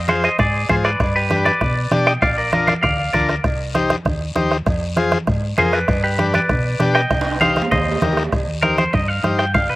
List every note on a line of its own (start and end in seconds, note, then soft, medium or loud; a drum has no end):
0.00 0.27 F2 medium
0.08 0.29 F4 medium
0.08 0.30 G#4 medium
0.08 0.30 C5 medium
0.08 0.23 C5 medium
0.08 0.24 F5 medium
0.08 bombo rim medium
0.08 high conga medium
0.08 short guiro medium
0.24 0.38 C5 medium
0.24 0.38 D#5 medium
0.24 bombo rim medium
0.24 short guiro medium
0.39 0.63 G#2 loud
0.39 0.68 G#4 medium
0.39 0.67 D5 medium
0.39 bombo low medium
0.39 bombo rim medium
0.39 cowbell medium
0.39 low conga medium
0.39 long guiro medium
0.69 0.94 G#2 loud
0.69 0.91 F4 medium
0.69 0.91 G#4 medium
0.69 0.75 G#4 medium
0.69 0.75 C5 medium
0.69 0.91 C5 medium
0.69 bombo low medium
0.69 bombo rim medium
0.69 high conga medium
0.69 short guiro medium
0.85 1.13 B4 medium
0.85 1.16 D5 medium
0.85 bombo rim medium
0.85 short guiro medium
1.00 1.49 G2 loud
1.00 bombo low medium
1.00 bombo rim medium
1.00 cowbell loud
1.00 long guiro medium
1.16 1.44 G4 medium
1.16 1.45 B4 medium
1.30 1.52 D4 medium
1.30 1.52 G4 medium
1.30 1.52 B4 medium
1.30 bombo rim medium
1.30 high conga medium
1.30 short guiro medium
1.45 2.03 B4 medium
1.45 2.03 D5 medium
1.45 bombo rim medium
1.45 high conga medium
1.45 short guiro medium
1.61 1.86 B2 loud
1.61 bombo low medium
1.61 bombo rim medium
1.61 cowbell medium
1.61 low conga medium
1.61 long guiro medium
1.91 2.16 B2 medium
1.91 2.13 D4 medium
1.91 2.13 G4 medium
1.91 2.13 D5 loud
1.91 bombo rim medium
1.91 high conga medium
1.91 short guiro medium
2.07 2.13 D#5 medium
2.07 2.12 G5 medium
2.07 bombo rim medium
2.07 short guiro medium
2.22 2.71 A#1 loud
2.22 2.36 D5 medium
2.22 2.36 F5 medium
2.22 bombo low medium
2.22 bombo rim medium
2.22 cowbell medium
2.22 long guiro medium
2.38 2.52 A#4 medium
2.38 2.52 D5 medium
2.52 2.74 D4 medium
2.52 2.74 F4 medium
2.52 2.67 A#4 medium
2.52 2.74 A#4 medium
2.52 2.68 D#5 medium
2.52 bombo rim medium
2.52 high conga medium
2.52 short guiro medium
2.67 2.73 D5 medium
2.67 2.72 F5 medium
2.67 bombo rim medium
2.67 high conga medium
2.67 short guiro medium
2.83 3.08 D2 medium
2.83 3.12 D5 medium
2.83 3.14 F5 medium
2.83 bombo low medium
2.83 bombo rim medium
2.83 cowbell medium
2.83 low conga medium
2.83 long guiro medium
3.13 3.38 D2 medium
3.13 3.35 D4 medium
3.13 3.35 F4 medium
3.13 3.35 A#4 medium
3.13 3.35 D5 medium
3.13 bombo low medium
3.13 bombo rim medium
3.13 high conga medium
3.13 short guiro medium
3.29 bombo rim medium
3.29 short guiro medium
3.44 3.93 C2 medium
3.44 bombo low medium
3.44 bombo rim medium
3.44 cowbell medium
3.44 long guiro medium
3.74 3.96 D#4 medium
3.74 3.96 G4 medium
3.74 3.96 C5 loud
3.74 bombo rim medium
3.74 high conga medium
3.74 short guiro medium
3.90 bombo rim medium
3.90 high conga medium
3.90 short guiro medium
4.05 4.30 D#2 loud
4.05 bombo low medium
4.05 bombo rim medium
4.05 cowbell medium
4.05 low conga medium
4.05 long guiro medium
4.35 4.60 D#2 medium
4.35 4.57 D#4 medium
4.35 4.57 G4 medium
4.35 4.57 C5 medium
4.35 bombo rim medium
4.35 high conga medium
4.35 short guiro medium
4.51 bombo rim medium
4.51 short guiro medium
4.66 5.15 F2 medium
4.66 bombo low medium
4.66 bombo rim medium
4.66 cowbell loud
4.66 low conga medium
4.66 long guiro medium
4.96 5.18 F4 medium
4.96 5.18 G#4 medium
4.96 5.19 C5 loud
4.96 bombo rim medium
4.96 high conga medium
4.96 short guiro medium
5.12 bombo rim medium
5.12 high conga medium
5.12 short guiro medium
5.27 5.52 G#2 medium
5.27 bombo low medium
5.27 bombo rim medium
5.27 cowbell medium
5.27 low conga medium
5.27 long guiro medium
5.58 5.83 F2 medium
5.58 5.79 F4 medium
5.58 5.79 G#4 medium
5.58 5.72 G#4 medium
5.58 5.80 A#4 medium
5.58 5.74 C5 medium
5.58 bombo rim medium
5.58 high conga medium
5.58 low conga medium
5.58 short guiro medium
5.73 6.02 B4 medium
5.73 6.03 D5 medium
5.73 bombo rim medium
5.73 short guiro medium
5.88 6.37 G2 loud
5.88 bombo low medium
5.88 bombo rim medium
5.88 cowbell loud
5.88 long guiro medium
6.04 6.32 G4 medium
6.04 6.33 B4 medium
6.18 6.40 D4 medium
6.18 6.40 G4 medium
6.18 6.40 B4 medium
6.18 bombo rim medium
6.18 high conga medium
6.18 short guiro medium
6.34 6.92 B4 medium
6.34 6.91 D5 medium
6.34 bombo rim medium
6.34 high conga medium
6.34 short guiro medium
6.49 6.74 B2 medium
6.49 bombo low medium
6.49 bombo rim medium
6.49 cowbell medium
6.49 low conga medium
6.49 long guiro medium
6.79 7.04 B2 medium
6.79 7.01 D4 medium
6.79 7.01 G4 medium
6.79 7.01 B4 loud
6.79 bombo rim medium
6.79 high conga medium
6.79 short guiro medium
6.95 7.38 D#5 medium
6.95 7.38 G5 loud
6.95 bombo rim medium
6.95 short guiro medium
7.10 7.59 C2 loud
7.10 bombo low medium
7.10 bombo rim medium
7.10 cowbell loud
7.10 low conga medium
7.10 high timbale medium
7.10 long guiro medium
7.21 high timbale loud
7.31 high timbale medium
7.41 7.62 D#4 medium
7.41 7.62 G4 medium
7.41 7.63 C5 medium
7.41 7.70 C5 medium
7.41 7.69 F5 loud
7.41 bombo rim medium
7.41 high conga medium
7.41 short guiro medium
7.56 bombo rim medium
7.56 high conga medium
7.56 short guiro medium
7.62 low timbale medium
7.71 7.96 D#2 medium
7.71 8.00 C5 medium
7.71 8.00 D#5 medium
7.71 bombo low medium
7.71 bombo rim medium
7.71 cowbell medium
7.71 low conga medium
7.71 low timbale medium
7.71 long guiro medium
7.82 low timbale medium
7.92 low timbale medium
8.02 8.26 D#2 medium
8.02 8.23 D#4 medium
8.02 8.23 G4 medium
8.02 8.24 A#4 medium
8.02 bombo rim medium
8.02 high conga medium
8.02 low conga medium
8.02 low timbale medium
8.02 short guiro medium
8.13 low timbale medium
8.17 bombo rim medium
8.17 short guiro medium
8.23 low timbale medium
8.32 8.45 C2 medium
8.32 bombo low medium
8.32 bombo rim medium
8.32 cowbell medium
8.32 long guiro medium
8.48 8.84 D#2 medium
8.62 8.84 D#4 medium
8.62 8.84 G4 medium
8.62 8.78 A#4 medium
8.62 8.85 C5 medium
8.62 bombo rim medium
8.62 high conga medium
8.62 short guiro medium
8.78 8.93 C5 medium
8.78 bombo rim medium
8.78 high conga medium
8.78 short guiro medium
8.93 9.18 G2 medium
8.93 9.08 D#5 medium
8.93 bombo low medium
8.93 bombo rim medium
8.93 cowbell medium
8.93 low conga medium
8.93 long guiro medium
9.08 9.38 F5 medium
9.23 9.56 G2 medium
9.23 9.45 D#4 medium
9.23 9.45 G4 medium
9.23 9.46 C5 medium
9.23 bombo rim medium
9.23 high conga medium
9.23 short guiro medium
9.39 9.54 G5 medium
9.39 bombo rim medium
9.39 short guiro medium
9.54 9.67 G1 medium
9.54 9.69 F5 medium
9.54 bombo low medium
9.54 bombo rim medium
9.54 cowbell loud
9.54 low conga medium
9.54 long guiro medium
9.69 9.76 B1 medium
9.69 9.76 B4 medium